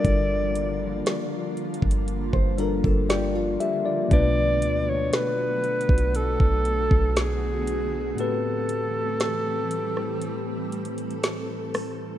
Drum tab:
HH |x-----------x-----------x-----------x---x---x---x-----------x-----------x-----------x-----------|x-----------x-----------x-----------x---x---x---x-----------x-----------x-----------x-----------|x-----------x-----------x-----------x-----------x-----------x--x--x--x--x-----------o-----------|
SD |------------------------o-----------------------------------------------o-----------------------|------------------------o-----------------------------------------------o-----------------------|------------------------o-----------------r-----------------------------o-----------r-----------|
BD |o-----------------------------------------o-----------o-----------o-----------------------------|o-----------------------------------------o-----------o-----------o-----------------------------|------------------------------------------------------------------------------------------------|